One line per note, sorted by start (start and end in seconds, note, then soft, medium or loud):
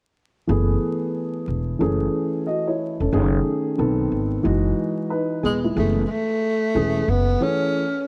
0.47 0.74 F#1 loud
0.47 1.77 E3 medium
0.47 1.78 A3 medium
0.47 1.78 B3 medium
0.47 1.79 G#4 medium
1.48 1.73 E1 medium
1.79 2.06 F#1 medium
1.79 3.09 E3 medium
1.79 3.10 A3 medium
1.79 2.45 C#4 medium
1.79 2.46 G#4 medium
2.47 2.67 F#4 medium
2.47 2.66 D#5 medium
2.68 2.99 E4 soft
2.68 2.99 C#5 medium
3.00 3.10 E1 medium
3.00 3.12 C#4 soft
3.00 3.32 A4 medium
3.12 3.38 F#1 medium
3.12 3.76 D#3 medium
3.12 3.79 A3 medium
3.12 3.79 C#4 medium
3.12 3.79 G#4 medium
3.78 4.04 B1 medium
3.78 4.44 D#3 medium
3.78 4.44 B3 medium
3.78 4.44 C4 medium
3.78 4.45 A4 medium
4.11 4.37 G#1 medium
4.43 4.70 F#1 medium
4.43 5.73 E3 medium
4.43 5.09 G#3 medium
4.43 5.09 D#4 medium
4.43 5.09 F#4 medium
5.10 5.42 D#4 medium
5.10 5.42 B4 medium
5.43 5.69 E1 medium
5.43 5.59 G#3 medium
5.43 5.63 B3 medium
5.43 5.63 G#4 medium
5.64 5.96 G#3 soft
5.64 5.95 E4 medium
5.75 6.02 F#1 loud
5.75 6.01 E3 medium
5.75 6.02 A3 medium
5.75 6.03 A3 medium
5.75 6.02 B3 medium
5.75 6.02 G#4 medium
6.06 6.13 G#3 medium
6.11 7.11 A3 medium
6.75 7.01 E1 medium
6.75 7.00 E3 medium
6.75 7.01 A3 medium
6.75 7.01 C#4 medium
6.75 7.01 G#4 medium
7.08 7.33 F#1 medium
7.08 7.44 B3 medium
7.40 7.82 E3 medium
7.40 7.82 A3 medium
7.40 7.82 C#4 medium
7.40 8.07 C#4 medium
7.40 7.82 G#4 medium